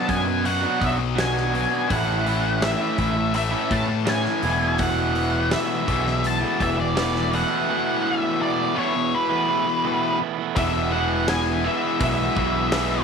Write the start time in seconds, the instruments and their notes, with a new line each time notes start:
Already playing: distorted electric guitar B2 F#3 B3, overdriven electric guitar B2
0.08 picked electric bass F#2, overdriven electric guitar F#3 B3 D4 F#4, lead electric guitar G#5, kick, open hi-hat
0.27 muted overdriven electric guitar stroke
0.44 distorted electric guitar B2 F#3 B3, lead electric guitar F#5, open hi-hat
0.61 overdriven electric guitar B3 D4 F#4
0.80 picked electric bass B1, overdriven electric guitar F#3 B3 D4 F#4, kick, open hi-hat
0.84 lead electric guitar E5
0.99 muted overdriven electric guitar stroke
1.16 overdriven electric guitar B2 F#3 B3 D4 F#4, snare, open hi-hat
1.20 lead electric guitar G#5
1.37 snare
1.53 overdriven electric guitar F#3 B3 D4 F#4, open hi-hat
1.71 overdriven electric guitar B3 D4 F#4
1.89 picked electric bass A1, overdriven electric guitar A2 E3 A3 C#4 E4, lead electric guitar F#5, kick, open hi-hat
2.25 overdriven electric guitar E3 A3 C#4 E4, open hi-hat
2.61 overdriven electric guitar A2 E3 A3 C#4 E4, lead electric guitar E5, snare, open hi-hat
2.98 picked electric bass A1, overdriven electric guitar E3 A3 C#4 E4, kick, open hi-hat
3.17 muted overdriven electric guitar stroke
3.34 distorted electric guitar A2 E3 A3, lead electric guitar E5, open hi-hat
3.51 overdriven electric guitar A3 C#4 E4
3.70 picked electric bass A2, overdriven electric guitar E3 A3 C#4 E4, lead electric guitar A5, kick, open hi-hat
3.88 muted overdriven electric guitar stroke
4.06 overdriven electric guitar A2 E3 A3 C#4 E4, lead electric guitar G#5, snare, open hi-hat
4.25 snare
4.42 picked electric bass E1, overdriven electric guitar E2 B2 E3 A3 B3 E4, open hi-hat
4.60 overdriven electric guitar E3 A3 B3 E4
4.78 overdriven electric guitar E2 B2 E3 A3 B3 E4, lead electric guitar F#5, kick, open hi-hat
5.13 overdriven electric guitar E3 A3 B3 E4, open hi-hat
5.50 overdriven electric guitar E2 B2 E3 A3 B3 E4, lead electric guitar E5, snare, open hi-hat
5.86 picked electric bass B1, distorted electric guitar E2 B2, overdriven electric guitar E3 A3 B3 E4, kick, open hi-hat
6.06 muted overdriven electric guitar stroke, snare
6.24 lead electric guitar A5, open hi-hat
6.41 overdriven electric guitar E3 A3 B3 E4
6.59 picked electric bass E1, overdriven electric guitar E3 A3 B3 E4, lead electric guitar E5, kick, open hi-hat
6.78 lead electric guitar D5, muted overdriven electric guitar stroke
6.95 overdriven electric guitar E2 B2 E3 A3 B3 E4, snare, open hi-hat
7.15 snare
7.32 distorted electric guitar E2 B2, overdriven electric guitar E3 A3 B3 E4, lead electric guitar F#5, open hi-hat
7.50 overdriven electric guitar E3 A3 B3 E4
7.68 overdriven electric guitar E2 B2 E3 A3 B3 E4
8.04 overdriven electric guitar E3 A3 B3 E4, lead electric guitar E5
8.39 overdriven electric guitar E2 B2 E3 A3 B3 E4, lead electric guitar D5
8.75 distorted electric guitar E2 B2, overdriven electric guitar E3 A3 B3 E4, lead electric guitar C#5
8.95 muted overdriven electric guitar stroke
9.15 lead electric guitar B4
9.30 overdriven electric guitar E3 A3 B3 E4
9.47 overdriven electric guitar E3 A3 B3 E4
9.67 muted overdriven electric guitar stroke
9.84 overdriven electric guitar E2 B2 E3 A3 B3 E4
10.20 overdriven electric guitar E3 A3 B3 E4
10.39 overdriven electric guitar E3 A3 B3 E4
10.56 picked electric bass E1, overdriven electric guitar E2 B2 E3 G#3 B3 E4, lead electric guitar E5, kick, open hi-hat
10.92 overdriven electric guitar E2 B2 E3 G#3 B3 E4, lead electric guitar F#5
11.28 overdriven electric guitar E2 B2 E3 G#3 B3 E4, lead electric guitar G#5, snare, open hi-hat
11.64 overdriven electric guitar E2 B2 E3 G#3 B3 E4, lead electric guitar E5
12.00 picked electric bass B1, overdriven electric guitar E2 B2 E3 G#3 B3 E4, lead electric guitar E5, kick, open hi-hat
12.37 picked electric bass B1, overdriven electric guitar E2 B2 E3 G#3 B3 E4, kick
12.72 overdriven electric guitar E2 B2 E3 G#3 B3 E4, snare, open hi-hat